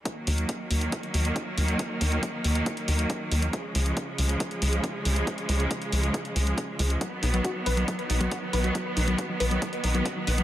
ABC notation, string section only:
X:1
M:4/4
L:1/8
Q:1/4=138
K:D#m
V:1 name="String section" clef=bass
[D,F,A,]8- | [D,F,A,]8 | [C,E,G,]8- | [C,E,G,]8 |
[D,F,B,]8- | [D,F,B,]8 |]